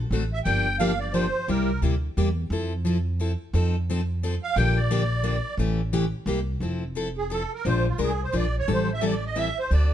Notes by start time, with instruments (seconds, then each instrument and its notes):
0.11 upright bass A1, steel-string acoustic guitar D3 A3 C4 F#4 A4
0.33 accordion E5
0.44 upright bass G1, steel-string acoustic guitar D3 F3 A#3 D4 G4, accordion G5
0.79 steel-string acoustic guitar D3 F3 A#3 D4 G4, accordion F5
1.00 accordion D5
1.13 steel-string acoustic guitar D3 F3 A#3 D4 G4, accordion C5
1.48 upright bass C2, steel-string acoustic guitar C3 G3 A#3 E4 G4, accordion A#4
1.82 upright bass D2, steel-string acoustic guitar C3 G3 A#3 E4 G4
2.17 upright bass E2, steel-string acoustic guitar C3 G3 A#3 E4 G4
2.50 upright bass F2, steel-string acoustic guitar F3 C4 E4 A4
2.85 steel-string acoustic guitar F3 C4 E4 A4
3.20 steel-string acoustic guitar F3 C4 E4 A4
3.53 upright bass F2, steel-string acoustic guitar F3 C4 D#4 A4
3.90 steel-string acoustic guitar F3 C4 D#4 A4
4.23 steel-string acoustic guitar F3 C4 D#4 A4
4.43 accordion F5
4.56 upright bass A#1, steel-string acoustic guitar D3 F3 A#3 D4 G4, accordion G5
4.77 accordion D5
4.91 steel-string acoustic guitar D3 F3 A#3 D4 G4
5.24 steel-string acoustic guitar D3 F3 A#3 D4 G4
5.57 upright bass A1, steel-string acoustic guitar C#3 E3 A3 C#4 G4
5.93 steel-string acoustic guitar C#3 E3 A3 C#4 G4
6.26 upright bass C2, steel-string acoustic guitar C3 G3 A#3 E4 G4
6.60 upright bass F1, steel-string acoustic guitar F3 C4 E4 A4
6.95 steel-string acoustic guitar F3 C4 E4 A4
7.18 accordion G#4
7.30 steel-string acoustic guitar F3 C4 E4 A4, accordion A4
7.54 accordion A#4
7.65 upright bass A#1, steel-string acoustic guitar F3 G#3 D4 F4 A#4, accordion C5
7.88 accordion F4
7.98 upright bass C2, steel-string acoustic guitar F3 G#3 D4 F4 A#4
8.03 accordion G#4
8.23 accordion C5
8.32 upright bass A#1, steel-string acoustic guitar F3 G#3 D4 F4 A#4
8.37 accordion D5
8.59 accordion C#5
8.68 upright bass A1, steel-string acoustic guitar E3 G3 C4 E4 A4
8.72 accordion C5
8.94 accordion E5
9.01 steel-string acoustic guitar E3 G3 C4 E4 A4
9.06 accordion D5
9.26 accordion D#5
9.35 steel-string acoustic guitar E3 G3 C4 E4 A4, accordion E5
9.59 accordion C5
9.71 upright bass D2, steel-string acoustic guitar D3 A3 C4 F#4 A4, accordion D5